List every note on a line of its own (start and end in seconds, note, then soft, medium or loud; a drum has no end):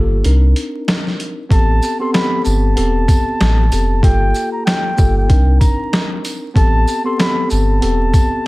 0.00 0.22 G1 medium
0.00 0.24 A#3 medium
0.00 0.24 F4 medium
0.00 0.25 G4 medium
0.00 0.25 A4 loud
0.24 0.54 C2 loud
0.24 1.42 C4 medium
0.24 1.42 D4 medium
0.24 1.43 D#4 medium
0.24 1.43 A#4 medium
0.24 closed hi-hat medium
0.56 closed hi-hat medium
0.88 snare loud
0.88 closed hi-hat medium
1.07 snare soft
1.20 closed hi-hat medium
1.49 1.80 A1 loud
1.49 1.95 B3 loud
1.49 1.96 C4 medium
1.49 1.96 G4 medium
1.49 1.97 A4 loud
1.49 1.98 A5 loud
1.49 kick loud
1.49 closed hi-hat loud
1.82 tambourine medium
1.82 shaker medium
1.99 2.12 B3 loud
1.99 2.12 C4 medium
1.99 2.13 G4 medium
1.99 2.14 A4 loud
1.99 2.12 C6 medium
2.13 2.72 B3 loud
2.13 2.73 C4 medium
2.13 2.73 G4 medium
2.13 2.73 A4 loud
2.13 2.42 B5 medium
2.13 snare loud
2.13 closed hi-hat medium
2.45 2.75 G1 loud
2.45 3.99 A5 medium
2.45 tambourine medium
2.45 shaker medium
2.75 3.06 E1 loud
2.75 3.65 B3 loud
2.75 3.65 C4 medium
2.75 3.65 G4 medium
2.75 3.66 A4 loud
2.75 closed hi-hat medium
3.08 kick medium
3.08 closed hi-hat medium
3.08 tambourine medium
3.08 shaker medium
3.40 3.69 A1 loud
3.40 snare loud
3.40 closed hi-hat medium
3.71 4.01 F1 loud
3.71 4.01 B3 medium
3.71 4.01 C4 medium
3.71 4.02 G4 medium
3.71 4.02 A4 medium
3.71 closed hi-hat medium
3.71 tambourine medium
3.71 shaker medium
4.02 4.32 G1 loud
4.02 4.91 A#3 medium
4.02 4.91 F4 medium
4.02 4.92 G4 medium
4.02 4.92 A4 loud
4.02 4.50 G5 loud
4.02 kick loud
4.02 closed hi-hat medium
4.34 tambourine medium
4.34 shaker medium
4.52 4.65 A#5 medium
4.65 5.13 G5 medium
4.65 snare loud
4.65 closed hi-hat medium
4.97 5.27 G1 loud
4.97 5.29 A#3 medium
4.97 5.29 F4 medium
4.97 5.30 G4 medium
4.97 5.30 A4 loud
4.97 kick loud
4.97 tambourine medium
4.97 shaker medium
5.18 5.59 G5 medium
5.28 5.59 C2 loud
5.28 6.47 C4 medium
5.28 6.47 D4 medium
5.28 6.48 D#4 medium
5.28 6.48 A#4 loud
5.28 kick medium
5.28 closed hi-hat medium
5.60 6.08 A#5 medium
5.60 kick medium
5.60 closed hi-hat medium
5.60 tambourine medium
5.60 shaker medium
5.93 snare loud
5.93 closed hi-hat medium
6.25 closed hi-hat medium
6.25 tambourine medium
6.25 shaker medium
6.54 6.85 A1 loud
6.54 7.01 B3 loud
6.54 7.01 C4 medium
6.54 7.01 G4 medium
6.54 7.02 A4 loud
6.54 7.03 A5 loud
6.54 kick loud
6.54 closed hi-hat medium
6.87 tambourine medium
6.87 shaker medium
7.04 7.17 B3 loud
7.04 7.17 C4 medium
7.04 7.18 G4 medium
7.04 7.19 A4 loud
7.04 7.17 C6 medium
7.18 7.77 B3 loud
7.18 7.78 C4 medium
7.18 7.78 G4 medium
7.18 7.79 A4 loud
7.18 7.48 B5 medium
7.18 snare loud
7.18 closed hi-hat medium
7.50 7.80 G1 loud
7.50 8.47 A5 medium
7.50 tambourine medium
7.50 shaker medium
7.81 8.11 E1 loud
7.81 8.47 B3 loud
7.81 8.47 C4 medium
7.81 8.47 G4 medium
7.81 8.47 A4 loud
7.81 closed hi-hat medium
8.14 kick medium
8.14 closed hi-hat medium
8.14 tambourine medium
8.14 shaker medium